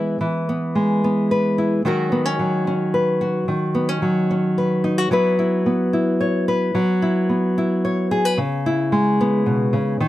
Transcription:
nylon-string guitar
Already playing: E3 G#3 B3 E4 B4
0.21 E3
0.49 B3
0.75 G#3
1.04 B3
1.31 B4
1.58 E4
1.85 D#3 F#3 C#4 F#4 A#4
2.12 B3
2.25 C#4
2.39 F#3
2.67 C#4
2.94 B4
3.21 F#4
3.48 D#3
3.75 B3
3.89 C#4
4.02 F#3
4.31 C#4
4.58 B4
4.84 D#4
4.98 F#4
5.11 F#3 B3 E4 B4
5.39 E4
5.66 B3
5.93 E4
6.21 C#5
6.48 B4
6.75 F#3
7.02 E4
7.29 B3
7.58 E4
7.85 C#5
8.11 G#4
8.25 B4
8.38 C#3
8.66 E4
8.92 G#3
9.21 B3
9.46 B2
9.73 C#3
10.00 D#3

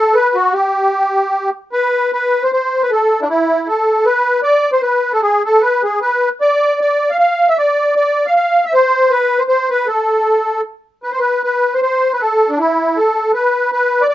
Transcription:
accordion
Already playing: A4
0.14 B4
0.35 F#4
0.53 G4
1.72 B4
2.13 B4
2.43 C5
2.52 C5
2.82 B4
2.91 A4
3.21 D4 E4
3.29 E4
3.68 A4
4.05 B4
4.43 D5
4.73 C5
4.82 B4
5.12 A4
5.22 G#4
5.45 A4
5.62 B4
5.84 G#4
6.02 B4
6.41 D5
6.81 D5
7.11 F5
7.19 F5
7.49 E5
7.58 D5
7.96 D5
8.26 F5
8.36 F5
8.65 E5
8.73 C5
9.11 B4
9.39 C5
9.48 C5
9.70 B4
9.87 A4
11.03 B4
11.12 C5
11.19 B4
11.44 B4
11.74 C5
11.82 C5
12.13 B4
12.21 A4
12.49 D4
12.59 E4
12.97 A4
13.34 B4
13.72 B4
14.01 D5
14.09 D5

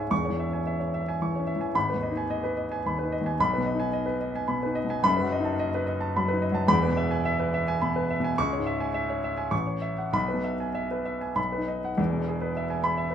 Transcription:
grand piano
Already playing: C#2 G#2 C#4 C#5 E5 C#6
0.00 G#5
0.10 E1 E2 C#6
0.25 C#5
0.29 E3
0.39 E5
0.50 C#4 G#5
0.67 E5
0.80 C#5
0.94 E5
1.09 G#5
1.22 E3 C#6
1.35 C#5
1.40 C#4
1.47 E5
1.56 E3
1.61 G#5
1.75 G#1 B5
1.90 B4
1.94 D#2
2.03 D#5
2.11 D#4
2.17 G#5
2.30 D#5
2.44 B4
2.57 D#5
2.72 G#5
2.86 D#2 B5
2.99 B4
3.03 D#4
3.12 D#5
3.21 D#2
3.26 G#5
3.40 B1 B5
3.53 B4
3.58 B2
3.66 D#5
3.75 D#4
3.80 G#5
3.93 D#5
4.06 B4
4.21 D#5
4.36 G#5
4.48 B2 B5
4.63 D#4 B4
4.75 D#5
4.85 B2
4.90 G#5
5.03 F#1 F#2 B5
5.17 B4
5.22 F#3
5.32 D#5
5.40 D#4
5.44 A5
5.59 D#5
5.74 B4
5.87 D#5
6.01 A5
6.16 F#3 B5
6.28 B4
6.32 D#4
6.42 D#5
6.52 F#3 A5
6.67 E1 E2 B5
6.83 B4
6.88 B2
6.97 E5
7.11 G#5
7.25 E5
7.39 B4
7.54 E5
7.68 G#5
7.82 B2 B5
7.96 B4
8.10 E5
8.20 B2
8.24 G#5
8.38 C#2 C#6
8.53 C#5
8.58 G#2
8.66 E5
8.80 G#5
8.94 E5
9.10 C#5
9.24 E5
9.38 G#5
9.51 A1 C#6
9.67 C#5
9.82 E5
9.98 F#5
10.13 B1 B5
10.29 B4
10.34 B2
10.44 E5
10.60 G#5
10.75 E5
10.91 B4
11.05 E5
11.21 G#5
11.35 B1 B5
11.52 B4
11.58 D#4
11.68 D#5
11.84 F#5
11.97 E1 E2
12.13 B2
12.28 G#4
12.41 B4
12.57 E5
12.70 G#5
12.84 B5
12.97 E5
13.11 B4

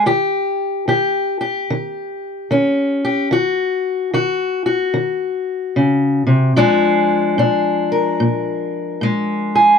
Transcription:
steel-string acoustic guitar
0.06 D#3 G4
0.88 D#3 G4
1.41 G4
1.70 D#3
2.51 D#3 C#4
3.05 G4
3.31 D#3 F#4
4.14 D#3 F#4
4.66 F#4
4.94 D#3
5.76 C#3
6.27 C3
6.56 A#2 F3 G#3 D4 G#4
7.38 A#2 D4
7.92 A#4
8.20 A#2
9.01 A#2 G#3
9.55 G#4

